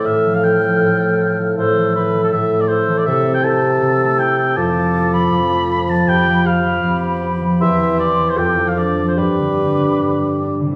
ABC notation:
X:1
M:4/4
L:1/16
Q:1/4=158
K:Am
V:1 name="Flute"
f'16 | e'8 e'4 e'4 | e'4 e'12 | [K:Gmix] d'12- d'2 z2 |
b4 b12 | c'8 d'4 d'4 | d'12- d'2 z2 |]
V:2 name="Oboe"
e3 f g8- g2 z2 | c4 B3 A e3 d c3 d | e3 g a8 g4 | [K:Gmix] a6 b8 a2 |
g4 f6 z6 | e4 d3 c g3 f d3 c | B12 z4 |]
V:3 name="Clarinet"
A16 | A8 A4 A4 | A4 A12 | [K:Gmix] A12- A2 z2 |
G4 G12 | G8 A4 A4 | G12- G2 z2 |]
V:4 name="Harp" clef=bass
[A,,A,]2 F,2 F2 F,2 A,,2 A,2 F2 F,2 | A,,2 E,2 E2 E,2 A,,2 A,2 E2 E,2 | C,2 C2 E2 C2 C,2 A,2 E2 C2 | [K:Gmix] F,,2 F,2 F2 F,2 F,,2 A,2 F2 F,2 |
F,,2 F,2 G2 F,2 F,,2 B,2 G2 F,2 | E,,2 E,2 G2 E,2 F,,2 F,2 D2 F,2 | G,,2 D,2 D2 D,2 G,,2 G,2 D2 D,2 |]
V:5 name="Bassoon" clef=bass
A,,16 | A,,16 | C,16 | [K:Gmix] F,16- |
F,12- F,2 z2 | E,8 F,8 | G,12- G,2 z2 |]